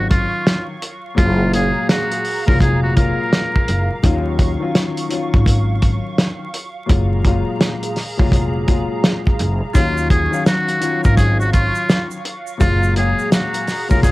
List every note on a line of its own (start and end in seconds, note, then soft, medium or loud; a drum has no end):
0.00 0.26 G#1 medium
0.00 0.72 D#3 medium
0.00 0.73 F#3 medium
0.00 1.15 F#3 medium
0.00 0.73 C#4 medium
0.00 0.74 F4 loud
0.00 9.71 F5 medium
0.00 1.15 C#6 medium
0.10 0.65 F4 medium
0.10 kick medium
0.10 closed hi-hat medium
0.47 snare loud
0.47 closed hi-hat medium
0.82 closed hi-hat medium
1.15 1.70 F#1 loud
1.15 1.50 A#2 loud
1.15 1.50 F#3 medium
1.15 1.51 G#3 medium
1.15 1.51 F4 loud
1.15 1.50 F4 loud
1.15 4.01 G#4 medium
1.15 4.01 A#5 medium
1.15 kick loud
1.15 closed hi-hat medium
1.53 2.20 A#2 medium
1.53 2.21 F#3 medium
1.53 2.21 G#3 medium
1.53 1.86 G#4 medium
1.53 2.22 F5 loud
1.53 closed hi-hat medium
1.89 2.44 F#4 medium
1.89 snare loud
1.89 closed hi-hat loud
2.12 closed hi-hat medium
2.25 open hi-hat medium
2.46 3.11 F1 medium
2.46 2.93 A#2 medium
2.46 2.93 F#3 medium
2.46 2.93 G#3 medium
2.46 2.94 F4 loud
2.46 2.59 A#4 medium
2.46 kick loud
2.60 2.81 G#4 medium
2.60 kick loud
2.60 closed hi-hat medium
2.83 2.95 F#4 medium
2.94 3.96 A#2 medium
2.94 3.96 F#3 medium
2.94 3.97 G#3 medium
2.94 3.97 F4 loud
2.94 4.00 A#4 medium
2.94 kick medium
2.94 closed hi-hat medium
3.33 snare loud
3.33 closed hi-hat medium
3.56 kick medium
3.68 3.88 F#1 loud
3.68 closed hi-hat medium
4.03 4.55 D#2 loud
4.03 4.56 D#3 loud
4.03 4.56 F#3 medium
4.03 6.87 F#3 medium
4.03 4.56 C#4 medium
4.03 4.57 F4 loud
4.03 6.87 C#6 medium
4.03 kick loud
4.03 closed hi-hat medium
4.39 kick medium
4.39 closed hi-hat medium
4.60 5.07 D#3 loud
4.60 5.07 F#3 medium
4.60 5.08 C#4 medium
4.60 5.08 F4 loud
4.75 snare loud
4.75 closed hi-hat loud
4.97 closed hi-hat medium
5.09 6.44 D#3 medium
5.09 6.44 F#3 medium
5.09 6.45 C#4 medium
5.09 6.45 F4 loud
5.09 closed hi-hat medium
5.34 5.97 G#1 medium
5.34 kick loud
5.46 kick loud
5.46 closed hi-hat medium
5.82 kick medium
5.82 closed hi-hat medium
6.18 snare loud
6.18 closed hi-hat medium
6.54 closed hi-hat medium
6.86 7.41 F#1 loud
6.86 7.21 A#2 loud
6.86 7.22 F#3 medium
6.86 7.22 G#3 medium
6.86 7.23 F4 loud
6.86 9.72 G#4 medium
6.86 9.72 A#5 medium
6.86 kick loud
6.86 closed hi-hat medium
7.24 7.92 A#2 medium
7.24 7.92 F#3 medium
7.24 7.93 G#3 medium
7.24 7.93 F4 loud
7.24 kick loud
7.24 closed hi-hat medium
7.61 snare loud
7.61 closed hi-hat loud
7.83 closed hi-hat medium
7.96 snare soft
7.96 open hi-hat medium
8.17 8.83 F1 medium
8.17 8.64 A#2 medium
8.17 8.64 F#3 medium
8.17 8.65 G#3 medium
8.17 8.65 F4 loud
8.17 kick loud
8.32 kick loud
8.32 closed hi-hat loud
8.66 9.67 A#2 medium
8.66 9.68 F#3 medium
8.66 9.68 G#3 medium
8.66 9.69 F4 loud
8.66 kick medium
8.66 closed hi-hat medium
9.04 snare loud
9.04 closed hi-hat medium
9.27 kick medium
9.39 9.59 F#1 loud
9.39 closed hi-hat medium
9.74 10.27 D#2 loud
9.74 10.27 D#3 loud
9.74 10.27 F#3 medium
9.74 12.58 F#3 medium
9.74 10.28 C#4 medium
9.74 10.07 F4 loud
9.74 10.28 F4 loud
9.74 14.12 F5 medium
9.74 12.58 C#6 medium
9.74 kick loud
9.74 closed hi-hat medium
9.74 shaker medium
9.97 shaker medium
10.10 10.43 G#4 medium
10.10 kick loud
10.10 closed hi-hat medium
10.31 10.78 D#3 loud
10.31 10.78 F#3 medium
10.31 10.79 C#4 medium
10.31 10.79 F5 loud
10.31 shaker soft
10.46 11.01 F#4 medium
10.46 snare loud
10.46 closed hi-hat loud
10.46 shaker medium
10.68 closed hi-hat medium
10.68 shaker soft
10.80 12.15 D#3 medium
10.80 12.16 F#3 medium
10.80 12.16 C#4 medium
10.80 12.17 F4 loud
10.80 closed hi-hat medium
10.80 shaker medium
11.04 11.68 G#1 loud
11.04 11.17 A#4 medium
11.04 kick loud
11.04 shaker medium
11.17 11.37 G#4 medium
11.17 kick loud
11.17 closed hi-hat medium
11.17 shaker medium
11.40 11.52 F#4 medium
11.40 shaker soft
11.53 12.08 F4 medium
11.53 kick medium
11.53 closed hi-hat medium
11.53 shaker soft
11.75 shaker soft
11.89 snare loud
11.89 closed hi-hat medium
11.89 shaker medium
12.11 shaker medium
12.25 closed hi-hat medium
12.47 shaker medium
12.57 13.12 F#1 loud
12.57 12.93 A#2 loud
12.57 12.93 F#3 medium
12.57 12.94 G#3 medium
12.57 12.94 F4 loud
12.57 12.93 F4 loud
12.57 14.12 G#4 medium
12.57 14.12 A#5 medium
12.57 kick loud
12.57 closed hi-hat medium
12.57 shaker medium
12.83 shaker medium
12.96 13.63 A#2 loud
12.96 13.64 F#3 medium
12.96 13.64 G#3 medium
12.96 13.29 G#4 medium
12.96 13.64 F5 loud
12.96 closed hi-hat medium
13.19 shaker medium
13.32 13.87 F#4 medium
13.32 snare loud
13.32 closed hi-hat loud
13.32 shaker medium
13.54 closed hi-hat medium
13.54 shaker soft
13.67 snare soft
13.67 open hi-hat medium
13.67 shaker medium
13.88 14.12 F1 medium
13.88 14.12 A#2 medium
13.88 14.12 F#3 medium
13.88 14.12 G#3 medium
13.88 14.12 F4 loud
13.88 14.02 A#4 medium
13.88 kick loud
13.88 shaker medium
14.03 14.12 G#4 medium
14.03 kick loud
14.03 closed hi-hat medium
14.03 shaker medium